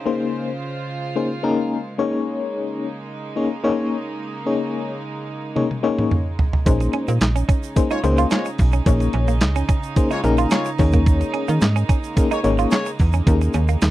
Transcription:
Already playing: string section C#3 G#3 C5
0.06 fm electric piano A#3 C#4 D#4 G#4 C5, string section F4
1.16 fm electric piano A#3 C#4 D#4 G#4 C5
1.43 fm electric piano A#3 C#4 D#4 G#4 A#4
1.98 string section C#3 A#3 D#4, fm electric piano A#3 C#4 D#4 G#4 C#5
3.36 fm electric piano A#3 C#4 D#4 G#4 C#5
3.64 fm electric piano A#3 C#4 D#4 G#4 C#5
4.46 fm electric piano A#3 C#4 D#4 G#4 C#5
5.56 fm electric piano A#3 C#4 D#4 G#4 C#5, high tom
5.71 high tom
5.83 fm electric piano A#3 C#4 D#4 G#4 C#5
5.98 mid tom
6.11 mid tom
6.39 floor tom
6.53 floor tom
6.66 fm bass A#1, string section C#3 C#4 D#4, fm electric piano A#3 C#4 D#4 G#4 C5, kick, closed hi-hat, shaker
6.80 muted clean electric guitar stroke, closed hi-hat, shaker
6.93 clean electric guitar C#4, closed hi-hat
7.08 fm bass A#2, clean electric guitar A#3, closed hi-hat, shaker
7.21 fm bass A#1, muted clean electric guitar stroke, snare, clap, closed hi-hat, shaker
7.36 clean electric guitar C#4, closed hi-hat, shaker
7.49 clean electric guitar C#4, kick, closed hi-hat, shaker
7.63 closed hi-hat, shaker
7.76 fm electric piano A#3 C#4 D#4 G#4 C5, kick, closed hi-hat, shaker
7.91 horn section G#3 F4 C#5, clean electric guitar D#4, closed hi-hat, shaker
8.04 fm bass C#2, fm electric piano A#3 C#4 D#4 G#4 C5, muted clean electric guitar stroke, closed hi-hat, shaker
8.18 clean electric guitar F4, closed hi-hat, shaker
8.30 horn section G#3 F4 C#5, clean electric guitar C#4, snare, clap, closed hi-hat, shaker
8.45 muted clean electric guitar stroke, closed hi-hat, shaker
8.58 fm bass B1, kick, open hi-hat, shaker
8.72 clean electric guitar C#4, closed hi-hat, shaker
8.86 fm bass A#1, fm electric piano A#3 C#4 D#4 G#4 C#5, kick, closed hi-hat, shaker
9.00 muted clean electric guitar stroke, closed hi-hat, shaker
9.13 fm bass A#1, clean electric guitar C#4, closed hi-hat
9.28 clean electric guitar A#3, closed hi-hat, shaker
9.41 fm bass C#2, muted clean electric guitar stroke, snare, clap, closed hi-hat, shaker
9.56 clean electric guitar C#4, closed hi-hat, shaker
9.69 clean electric guitar C#4, kick, closed hi-hat, shaker
9.83 closed hi-hat, shaker
9.96 fm electric piano A#3 C#4 D#4 G#4 C5, kick, closed hi-hat, shaker
10.11 horn section G#3 F4 C#5, clean electric guitar D#4, closed hi-hat, shaker
10.24 fm bass A#1, fm electric piano A#3 C#4 D#4 G#4 A#4, muted clean electric guitar stroke, closed hi-hat, shaker
10.37 clean electric guitar F4, closed hi-hat, shaker
10.50 horn section G#3 F4 C#5, clean electric guitar C#4, snare, clap, closed hi-hat, shaker
10.65 muted clean electric guitar stroke, closed hi-hat, shaker
10.78 fm bass D#2, string section G#3 A#3, fm electric piano A#3 C#4 D#4 G#4 C#5, kick, open hi-hat, shaker
10.92 clean electric guitar A#3, kick, closed hi-hat, shaker
11.06 kick, closed hi-hat, shaker
11.21 muted clean electric guitar stroke, closed hi-hat, shaker
11.34 clean electric guitar C#4, closed hi-hat
11.48 fm bass D#3, clean electric guitar A#3, closed hi-hat, shaker
11.61 fm bass G#2, muted clean electric guitar stroke, snare, clap, closed hi-hat, shaker
11.76 clean electric guitar C#4, closed hi-hat, shaker
11.89 clean electric guitar C#4, kick, closed hi-hat, shaker
12.04 closed hi-hat, shaker
12.16 fm electric piano A#3 C#4 D#4 G#4 A#4, kick, closed hi-hat, shaker
12.31 horn section A#3 G#4 C#5, clean electric guitar D#4, closed hi-hat, shaker
12.44 fm bass G#1, fm electric piano A#3 C#4 D#4 G#4 C#5, muted clean electric guitar stroke, closed hi-hat, shaker
12.58 clean electric guitar F4, closed hi-hat, shaker
12.71 horn section A#3 G#4 C#5, clean electric guitar C#4, snare, clap, closed hi-hat, shaker
12.86 muted clean electric guitar stroke, closed hi-hat, shaker
12.99 fm bass E2, kick, open hi-hat, shaker
13.13 clean electric guitar C#4, closed hi-hat, shaker
13.26 fm bass D#2, fm electric piano A#3 C#4 D#4 G4 A#4, kick, closed hi-hat, shaker
13.34 fm electric piano G#4
13.41 muted clean electric guitar stroke, closed hi-hat, shaker
13.53 fm bass D#2, clean electric guitar C#4, closed hi-hat, shaker
13.68 clean electric guitar A#3, closed hi-hat, shaker
13.82 fm bass D#2, muted clean electric guitar stroke, snare, clap, closed hi-hat, shaker

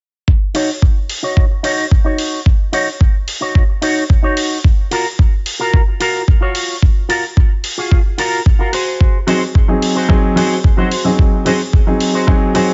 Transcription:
0.28 kick
0.54 clean electric guitar D#4 F#4 C#5, open hi-hat
0.81 muted clean electric guitar stroke, kick
1.10 open hi-hat
1.23 clean electric guitar D#4 F#4 C#5
1.37 kick
1.63 clean electric guitar D#4 F#4 C#5, open hi-hat
1.91 kick
2.04 clean electric guitar D#4 F#4 C#5
2.18 open hi-hat
2.46 kick
2.72 clean electric guitar D#4 F#4 C#5, open hi-hat
3.00 muted clean electric guitar stroke, kick
3.28 open hi-hat
3.41 clean electric guitar D#4 F#4 C#5
3.55 kick
3.82 clean electric guitar D#4 F#4 C#5, open hi-hat
4.10 kick
4.23 clean electric guitar D#4 F#4 C#5
4.37 open hi-hat
4.64 kick
4.91 clean electric guitar F4 F#4 A#4, open hi-hat
5.18 muted clean electric guitar stroke, kick
5.46 open hi-hat
5.59 clean electric guitar F4 F#4 A#4
5.74 kick
6.00 clean electric guitar F4 F#4 A#4, open hi-hat
6.28 kick
6.41 clean electric guitar F4 F#4 C#5
6.55 open hi-hat
6.83 kick
7.09 clean electric guitar F4 F#4 A#4, open hi-hat
7.36 muted clean electric guitar stroke, kick
7.64 open hi-hat
7.78 clean electric guitar F4 F#4 G#4
7.92 kick
8.18 clean electric guitar F4 F#4 A#4, open hi-hat
8.46 kick
8.59 clean electric guitar F4 F#4 A#4
8.73 clean electric guitar F#4 G#4 C5, open hi-hat
9.01 kick
9.27 grand piano F#3 C4 D#4 G#4, clean electric guitar F#4 G#4 C5, open hi-hat
9.54 muted clean electric guitar stroke, kick
9.68 grand piano F#3 C4 D#4 G#4
9.82 open hi-hat
9.95 clean electric guitar F#4 G#4 C5
10.09 grand piano F#3 C4 D#4 G#4, kick
10.36 grand piano F#3 C4 D#4 G#4, clean electric guitar F#4 G#4 C5, open hi-hat
10.64 kick
10.77 grand piano F#3 C4 D#4 F#4, clean electric guitar F#4 G#4 C5
10.92 open hi-hat
11.05 grand piano F#3 C4 D#4 G#4
11.19 kick
11.45 grand piano F#3 C4 D#4 G#4, clean electric guitar F#4 G#4 C5, open hi-hat
11.72 muted clean electric guitar stroke, kick
11.87 grand piano F#3 C4 D#4 G#4
12.00 open hi-hat
12.13 clean electric guitar F#4 G#4 C5
12.27 grand piano F#3 C4 D#4 G#4, kick
12.54 grand piano F#3 C4 D#4 G#4, clean electric guitar F#4 G#4 C5, open hi-hat

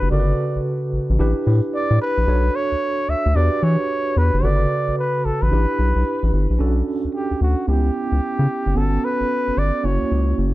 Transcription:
Already playing: tine electric piano D4 F#4 G4 B4
0.02 analog synth bass F#1
0.11 analog synth bass G1, tine electric piano C#3 F#4 A4 A#4, flugelhorn D5
0.19 tine electric piano B4
0.56 analog synth bass A1
0.93 analog synth bass A1
1.10 analog synth bass A1
1.19 analog synth bass A1, tine electric piano D4 E4 G4 B4
1.47 analog synth bass A2
1.74 flugelhorn D5
1.91 analog synth bass A2
2.01 flugelhorn B4
2.18 analog synth bass A#1
2.27 analog synth bass B1, tine electric piano D4 F#4 A4 C#5
2.55 flugelhorn C#5
2.72 analog synth bass D2
3.08 analog synth bass D2, flugelhorn E5
3.26 analog synth bass D2
3.35 analog synth bass E2, tine electric piano D4 F#4 G4 B4, flugelhorn D5
3.63 analog synth bass E3, flugelhorn C#5
4.17 analog synth bass E2, flugelhorn B4
4.34 analog synth bass F#1
4.43 analog synth bass G1, tine electric piano C#3 F#4 A4 B4, flugelhorn D5
4.88 analog synth bass A1
4.99 flugelhorn B4
5.25 analog synth bass A1, flugelhorn A4
5.42 analog synth bass A1, flugelhorn B4
5.51 analog synth bass A1, tine electric piano D4 E4 G4 B4
5.79 analog synth bass B1
5.96 analog synth bass B1
6.23 analog synth bass A1
6.33 analog synth bass G1
6.50 analog synth bass A#1
6.59 analog synth bass B1, tine electric piano C#4 D4 F#4 A4
7.05 analog synth bass D2
7.15 flugelhorn G4
7.31 analog synth bass D2
7.41 analog synth bass D2, flugelhorn F#4
7.67 analog synth bass C#2, tine electric piano B3 C#4 E4 G4, flugelhorn G4
8.12 analog synth bass C#2
8.39 analog synth bass C#3
8.66 analog synth bass F#1
8.75 analog synth bass G1, tine electric piano B3 C#4 F#4 A4, flugelhorn A4
9.04 flugelhorn B4
9.21 analog synth bass G1
9.48 analog synth bass G1
9.57 analog synth bass G1, flugelhorn D5
9.83 analog synth bass F#1, tine electric piano A#3 C#4 E4 F#4, flugelhorn C#5
10.01 analog synth bass C#2
10.12 analog synth bass C#2
10.38 analog synth bass F#1

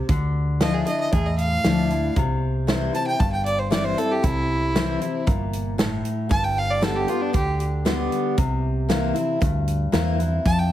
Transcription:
0.09 fingered electric bass D2, steel-string acoustic guitar D3, kick, closed hi-hat
0.60 steel-string acoustic guitar F3 A3 D4 E4, fiddle D#5, snare, closed hi-hat
0.74 fiddle G#4
0.86 steel-string acoustic guitar D4 E4, fiddle D#5, closed hi-hat
1.00 fiddle D#5
1.12 fingered electric bass E2, steel-string acoustic guitar A2, fiddle G#4, kick, closed hi-hat
1.26 fiddle D#5
1.38 fiddle F5, closed hi-hat
1.64 fingered electric bass D2, steel-string acoustic guitar F3 A3 D4 E4, snare, closed hi-hat
1.90 steel-string acoustic guitar D4 E4, closed hi-hat
2.16 fingered electric bass C2, steel-string acoustic guitar C3, kick, closed hi-hat
2.67 steel-string acoustic guitar E3 G3 C4 E4, snare, closed hi-hat
2.93 steel-string acoustic guitar C4 E4, fiddle A5, closed hi-hat
3.07 fiddle G5
3.19 fingered electric bass G1, steel-string acoustic guitar G2, fiddle A5, kick, closed hi-hat
3.33 fiddle G5
3.46 fiddle D5, closed hi-hat
3.59 fiddle C5
3.71 steel-string acoustic guitar E3 G3 C4 E4, fiddle D5, snare, closed hi-hat
3.85 fiddle C5
3.97 steel-string acoustic guitar C4 E4, fiddle A4, closed hi-hat
4.11 fiddle G4
4.23 fingered electric bass C2, steel-string acoustic guitar C3, fiddle E4, kick, closed hi-hat
4.75 steel-string acoustic guitar E3 G3 C4 E4, snare, closed hi-hat
5.00 steel-string acoustic guitar C4 E4, closed hi-hat
5.27 fingered electric bass G1, steel-string acoustic guitar A#2, kick, closed hi-hat
5.53 closed hi-hat
5.78 steel-string acoustic guitar A2, snare, closed hi-hat
6.05 closed hi-hat
6.29 fingered electric bass G1, steel-string acoustic guitar G2, fiddle A5, kick, closed hi-hat
6.44 fiddle G5
6.58 fiddle F5
6.71 fiddle D5
6.81 steel-string acoustic guitar D3 G3 B3 G4, fiddle A4, snare, closed hi-hat
6.96 fiddle G4
7.07 steel-string acoustic guitar B3 G4, fiddle F4, closed hi-hat
7.22 fiddle D4
7.33 fingered electric bass D2, steel-string acoustic guitar D3, fiddle G4, kick, closed hi-hat
7.60 closed hi-hat
7.85 steel-string acoustic guitar D3 G3 B3 G4, snare, closed hi-hat
8.12 closed hi-hat
8.37 fingered electric bass C2, steel-string acoustic guitar C3, kick, closed hi-hat
8.89 steel-string acoustic guitar E3 A#3 C4 E4, snare, closed hi-hat
9.14 steel-string acoustic guitar C4 E4, closed hi-hat
9.41 fingered electric bass D2, steel-string acoustic guitar G2, kick, closed hi-hat
9.68 closed hi-hat
9.92 fingered electric bass E2, steel-string acoustic guitar E3 A#3 C4 E4, snare, closed hi-hat
10.19 steel-string acoustic guitar C4 E4, closed hi-hat
10.45 fingered electric bass F2, steel-string acoustic guitar F2, fiddle A5, kick, closed hi-hat
10.59 fiddle G5

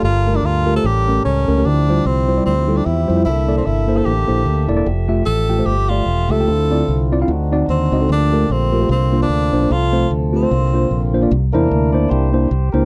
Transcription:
Already playing: tonewheel organ G3 F4 A4
0.03 fingered electric bass G1, tine electric piano G2, tenor saxophone F4, tonewheel organ A#4
0.27 tine electric piano A3 F4 G4 A#4
0.36 tenor saxophone D4
0.43 fingered electric bass D2, tenor saxophone F4
0.66 tine electric piano A3 F4 G4 A#4
0.76 tine electric piano A3 F4 G4, tenor saxophone A4
0.84 fingered electric bass A1, tine electric piano A2, tonewheel organ C#4, tenor saxophone G4
1.08 tine electric piano A3 C#4 G4 A#4
1.25 fingered electric bass C#2, tenor saxophone C#4
1.48 fingered electric bass C#2, tine electric piano A3 C#4 G4 A#4
1.57 tine electric piano A3 C#4 G4 A#4
1.65 fingered electric bass D2, tine electric piano D3, tonewheel organ F3 C4 E4 G4, tenor saxophone D4
1.89 tine electric piano G3 E4 F4 C5
2.06 fingered electric bass C2, tenor saxophone C4
2.28 tine electric piano G3 E4 F4 C5
2.37 tine electric piano G3 E4 F4 D5
2.46 fingered electric bass D2, tenor saxophone C4
2.68 tine electric piano G3 E4 F4 A4
2.77 tenor saxophone D4
2.86 fingered electric bass E2, tenor saxophone E4
3.08 fingered electric bass F2, tine electric piano G3 E4 F4 C5
3.16 tine electric piano G3 E4 F4 C5
3.25 fingered electric bass C2, tine electric piano C3, tonewheel organ D3 A#3 A4 E5, tenor saxophone E4
3.48 tine electric piano A#3 E4 A4 D5
3.58 tenor saxophone C4
3.66 fingered electric bass G1, tenor saxophone E4
3.88 tine electric piano A#3 E4 A4 C5
3.96 tine electric piano A#3 E4 A4 C5, tenor saxophone A4
4.05 fingered electric bass A1, tenor saxophone G4
4.28 fingered electric bass A#1, tine electric piano A#3 E4 A4 C5
4.46 fingered electric bass D2
4.68 fingered electric bass E1, tine electric piano A#3 E4 A4 D5
4.76 tine electric piano A#3 E4 A4 D5
4.86 fingered electric bass F1, tonewheel organ F3 A3 G4
5.08 tine electric piano A3 F4 G4 E5
5.26 fingered electric bass A1, tenor saxophone A4
5.49 tine electric piano A3 F4 G4 G5
5.59 tine electric piano A3 F4 G4 C5
5.66 fingered electric bass G1, tenor saxophone G4
5.89 tine electric piano A3 F4 G4 D5, tenor saxophone F4
6.06 fingered electric bass E1
6.29 fingered electric bass C#2, tine electric piano A3 F4 G4 E5, tenor saxophone A4
6.40 tine electric piano A3 F4 G4 G5
6.47 fingered electric bass D2, tonewheel organ D3 C4 E4 F4, tine electric piano D3
6.71 tine electric piano C4 E4 F4 D5
6.88 fingered electric bass C2
7.12 tine electric piano C4 E4 F4 D5
7.21 tine electric piano C4 E4 F4 F5
7.28 fingered electric bass D2, tine electric piano D3, tonewheel organ D4 D#4 F#4
7.52 tine electric piano C4 D#4 F#4 D5
7.68 fingered electric bass D#2, tenor saxophone C4
7.92 fingered electric bass C#2, tine electric piano C4 D#4 F#4 D#5
8.01 tine electric piano C4 D#4 F#4 A4
8.09 fingered electric bass D2, tine electric piano D3, tonewheel organ F3 A3 A#3 G4, tenor saxophone D4
8.33 tine electric piano A3 F4 G4 A#4
8.49 fingered electric bass A#1, tenor saxophone C4
8.72 tine electric piano A3 F4 G4 A#4
8.81 tine electric piano A3 F4 G4 C5
8.89 fingered electric bass C2, tine electric piano C3, tonewheel organ D3 C4 F4, tenor saxophone C4
9.12 tine electric piano A#3 D4 F4 C5
9.22 tenor saxophone D4
9.29 fingered electric bass D2
9.53 fingered electric bass B1, tine electric piano A#3 D4 F4 C5
9.62 tine electric piano A#3 D4 F4 C5
9.70 fingered electric bass C2, tine electric piano C3, tonewheel organ F3 A3 A4, tenor saxophone F4
9.93 tine electric piano A3 C4 F4 C5
10.11 fingered electric bass D2
10.33 tine electric piano A3 C4 F4 G4, tenor saxophone C4
10.42 tine electric piano A3 C4 F4 C5
10.51 fingered electric bass C2, tine electric piano C3, tonewheel organ D3 A#3 F4
10.74 tine electric piano A#3 D4 F4 C5
10.91 fingered electric bass A#1
11.14 tine electric piano A#3 D4 F4 C5
11.22 tine electric piano A#3 D4 F4 D5
11.31 fingered electric bass C2, tine electric piano C3
11.53 fingered electric bass E2, tonewheel organ A#3 D4 E4 A#4, tine electric piano A#3 D4 E4 C5
11.71 fingered electric bass D2
11.93 tine electric piano A#3 D4 E4 C5, tonewheel organ D5
12.09 fingered electric bass C2, tonewheel organ E4 G4 C5
12.33 tine electric piano A#3 D4 E4 C5, tonewheel organ A#3 D4 E4
12.51 fingered electric bass C2
12.72 fingered electric bass C#2, tine electric piano A#3 D4 E4 C5, tonewheel organ A#4

